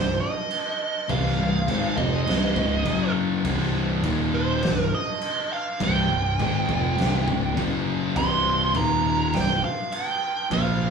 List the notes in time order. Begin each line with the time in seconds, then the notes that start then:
Already playing: C1 C2 G2 C5
0.20 D#5
0.51 crash
1.08 C1 C2 G2 C3 F5, kick, crash
1.26 snare
1.38 C1 C2 G2
1.67 G#1 G#2 D#3 G#3, kick, crash
1.97 F1 F2 C3 F3 D#5, kick
2.27 C1 C2 G2 C3, snare, crash
2.56 C#1 C#2 G#2 C#3, kick
2.85 F#1 F#2 C#3 F#3, kick, crash
3.44 C1 C2 G2 C3, kick, crash
3.62 snare
4.03 D#1 D#2 A#2 D#3, kick, crash
4.34 C5
4.63 C1 C2 G2, kick, snare, crash
4.80 A#4
4.94 D#5
5.21 crash
5.53 F5
5.80 C1 C2 G2 C3 G5, kick, crash
6.10 C1 C2 G2
6.39 G#1 G#2 D#3 G#3, kick, crash
6.68 F1 F2 C3 F3, kick
6.97 C1 C2 G2 C3, snare, crash
7.27 C#1 C#2 G#2 C#3, kick
7.57 F#1 F#2 C#3 F#3, kick, crash
8.16 C1 C2 G2 C3 C6, kick, crash
8.74 D#1 D#2 A#2 D#3 A#5, kick, crash
9.33 C1 C2 G2 G5, kick, snare, crash
9.64 F5
9.92 G5, crash
10.51 A#1 A#2 F3 A#3 F5, kick, crash